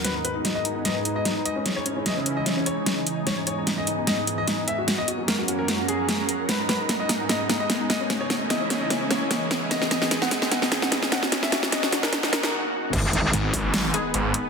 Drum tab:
CC |----------------|----------------|----------------|----------------|
HH |x-x-x-x-x-x-x-x-|x-x-x-x-x-x-x-x-|x-x-x-x-x-x-x-x-|x-x-x-x-x-x-x-x-|
SD |o---o---o---o---|o---o---o---o---|o---o---o---o---|o---o---o---o---|
BD |----------------|----------------|----------------|----------------|

CC |----------------|----------------|----------------|----------------|
HH |x-x-x-o-x-x-x-x-|x-x-x-o-x-x-x-x-|x-x-x-o-x-x-x-x-|x-x-x-o-x-x-----|
SD |o-o-o-o-o-o-o-o-|o-o-o-o-o-o-o-o-|oooooooooooooooo|oooooooooooo----|
BD |----------------|----------------|----------------|----------------|

CC |x---------------|
HH |x-x-x-o-x-x-x-x-|
SD |--------o-------|
BD |o-----o---------|